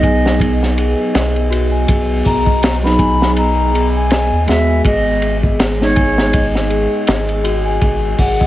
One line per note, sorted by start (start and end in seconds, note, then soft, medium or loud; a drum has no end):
0.00 0.95 B1 loud
0.00 2.79 F#3 medium
0.00 2.79 B3 medium
0.00 4.87 B3 medium
0.00 2.80 D#4 medium
0.00 0.25 G#4 medium
0.00 4.84 G#4 medium
0.00 0.40 D#5 medium
0.00 0.53 D#5 loud
0.00 0.22 G#5 loud
0.00 kick loud
0.00 ride medium
0.25 0.40 G#4 medium
0.25 snare medium
0.40 0.76 D#5 medium
0.40 kick loud
0.40 ride medium
0.63 snare soft
0.76 1.12 G#4 medium
0.76 ride medium
1.13 1.86 B1 loud
1.13 1.49 D#5 medium
1.13 snare loud
1.13 ride medium
1.36 ride soft
1.50 1.70 F#4 loud
1.50 ride medium
1.71 1.86 G#5 medium
1.87 2.22 B1 loud
1.87 2.23 G#4 medium
1.87 kick loud
1.87 ride medium
2.24 4.32 B1 medium
2.24 2.44 G#4 medium
2.24 2.78 A#5 medium
2.24 kick medium
2.24 open hi-hat medium
2.45 2.97 D#5 medium
2.45 kick medium
2.63 snare loud
2.63 ride medium
2.83 3.70 F#3 medium
2.83 3.70 B3 medium
2.83 3.71 D#4 loud
2.83 3.32 B5 loud
2.83 snare soft
2.98 3.18 G#5 medium
2.98 kick loud
2.98 ride medium
3.20 3.36 G#4 medium
3.20 snare medium
3.37 3.72 D#5 medium
3.37 3.89 A#5 medium
3.37 ride medium
3.74 4.09 G#4 medium
3.74 ride medium
3.96 4.44 G#5 medium
4.10 4.46 D#5 medium
4.10 snare loud
4.10 ride medium
4.32 4.46 D#2 loud
4.47 4.81 D#2 loud
4.47 5.75 G#3 medium
4.47 5.75 B3 medium
4.47 4.67 F#4 loud
4.47 5.76 G#4 loud
4.47 4.82 E5 medium
4.47 snare medium
4.47 ride medium
4.69 4.83 G#5 medium
4.85 6.87 G#1 loud
4.85 8.47 G#3 medium
4.85 5.21 G#4 medium
4.85 8.47 G#4 medium
4.85 5.37 D#5 loud
4.85 kick loud
4.85 ride loud
5.22 5.41 G#4 medium
5.22 ride medium
5.43 5.94 D#5 medium
5.43 kick medium
5.59 snare loud
5.59 ride medium
5.80 8.47 G#3 medium
5.80 8.47 B3 medium
5.80 8.47 D#4 medium
5.80 6.47 C#5 loud
5.80 snare soft
5.95 6.15 G#5 medium
5.95 kick medium
5.95 ride medium
6.17 6.32 G#4 medium
6.17 snare medium
6.33 6.69 D#5 medium
6.33 kick loud
6.33 ride medium
6.55 snare soft
6.69 7.05 G#4 medium
6.69 ride medium
7.07 7.79 G#1 medium
7.07 7.43 D#5 medium
7.07 snare loud
7.07 ride medium
7.29 ride soft
7.44 7.63 F#4 loud
7.44 ride medium
7.65 7.80 G#5 medium
7.81 8.15 G#1 loud
7.81 8.17 G#4 medium
7.81 kick loud
7.81 ride medium
8.18 8.47 G#1 medium
8.18 8.37 G#4 medium
8.18 8.47 F#5 loud
8.18 kick loud
8.18 open hi-hat medium
8.40 8.47 D#5 medium
8.40 kick loud